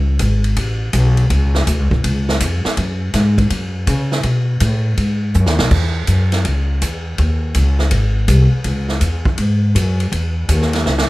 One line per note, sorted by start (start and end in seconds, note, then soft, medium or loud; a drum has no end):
0.00 0.19 C#2 loud
0.19 0.56 G#1 loud
0.19 kick soft
0.19 hi-hat pedal soft
0.19 ride medium
0.44 ride medium
0.56 0.92 A1 medium
0.56 kick soft
0.56 ride medium
0.93 1.29 B1 loud
0.93 kick soft
0.93 hi-hat pedal medium
0.93 ride medium
1.17 ride medium
1.30 1.66 C#2 loud
1.30 kick soft
1.30 ride medium
1.55 snare medium
1.67 1.80 D2 medium
1.67 kick soft
1.67 hi-hat pedal medium
1.67 ride medium
1.80 1.92 C#2 medium
1.91 2.03 B1 medium
1.91 kick medium
2.04 2.40 C#2 medium
2.04 kick soft
2.04 ride medium
2.29 snare medium
2.40 2.63 F2 loud
2.40 kick soft
2.40 hi-hat pedal medium
2.40 ride medium
2.65 muted upright bass stroke soft
2.65 snare medium
2.77 3.13 F#2 loud
2.77 kick soft
2.77 ride medium
3.14 3.49 G#2 loud
3.14 kick soft
3.14 snare soft
3.14 hi-hat pedal medium
3.14 ride medium
3.38 kick medium
3.38 ride medium
3.50 3.86 F#2 medium
3.50 kick soft
3.50 ride medium
3.87 4.23 C#3 loud
3.87 kick soft
3.87 hi-hat pedal medium
3.87 ride medium
4.12 snare medium
4.23 4.60 B2 loud
4.23 kick soft
4.23 ride medium
4.60 4.96 A2 loud
4.60 kick soft
4.60 hi-hat pedal medium
4.60 ride medium
4.97 5.33 G#2 medium
4.97 kick soft
4.97 ride medium
5.34 5.47 F#2 loud
5.34 hi-hat pedal medium
5.46 5.58 D#2 medium
5.46 snare medium
5.59 5.70 B1 medium
5.59 snare loud
5.71 6.07 E2 loud
5.71 kick medium
5.71 crash medium
6.07 6.43 F#2 medium
6.07 kick soft
6.07 hi-hat pedal medium
6.07 ride medium
6.32 snare medium
6.32 ride medium
6.45 6.80 C#2 medium
6.45 kick soft
6.45 ride medium
6.82 7.17 E2 loud
6.82 kick soft
6.82 hi-hat pedal medium
6.82 ride medium
7.18 7.54 D#2 medium
7.18 kick soft
7.18 ride medium
7.54 7.90 C#2 loud
7.54 kick soft
7.54 hi-hat pedal medium
7.54 ride medium
7.79 snare soft
7.91 8.27 G#1 medium
7.91 kick soft
7.91 ride medium
8.28 8.51 C2 loud
8.28 kick soft
8.28 hi-hat pedal medium
8.28 ride medium
8.52 muted upright bass stroke soft
8.64 9.00 C#2 loud
8.64 kick soft
8.64 ride medium
8.88 snare soft
9.01 9.37 E2 loud
9.01 kick soft
9.01 hi-hat pedal medium
9.01 ride medium
9.25 kick medium
9.38 9.74 G#2 medium
9.38 kick soft
9.38 ride medium
9.75 10.11 F#2 loud
9.75 kick soft
9.75 hi-hat pedal medium
9.75 ride medium
10.00 ride medium
10.12 10.48 E2 medium
10.12 kick soft
10.12 ride medium
10.49 10.84 D#2 loud
10.49 kick soft
10.49 hi-hat pedal medium
10.49 ride medium
10.62 snare soft
10.73 snare medium
10.73 ride medium
10.86 11.08 C#2 medium
10.86 snare medium
10.98 snare medium